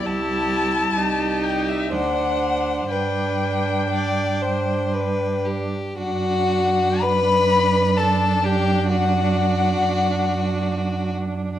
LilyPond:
<<
  \new Staff \with { instrumentName = "Violin" } { \time 3/4 \key d \mixolydian \tempo 4 = 63 a''4. g''16 e''16 fis''4 | g''2~ g''8 r8 | fis''4 b''4 a''8 g''8 | fis''2~ fis''8 r8 | }
  \new Staff \with { instrumentName = "Violin" } { \time 3/4 \key d \mixolydian g'4 g'4 c''4 | b'4 d''8 c''8 b'8 g'8 | fis'4 b'4 a'8 g'8 | fis'2~ fis'8 r8 | }
  \new Staff \with { instrumentName = "Viola" } { \time 3/4 \key d \mixolydian e'4 ees'4 d'4 | d'2. | d'2.~ | d'2. | }
  \new Staff \with { instrumentName = "Cello" } { \clef bass \time 3/4 \key d \mixolydian c,4 c,4 d,4 | g,2. | fis,2.~ | fis,2. | }
>>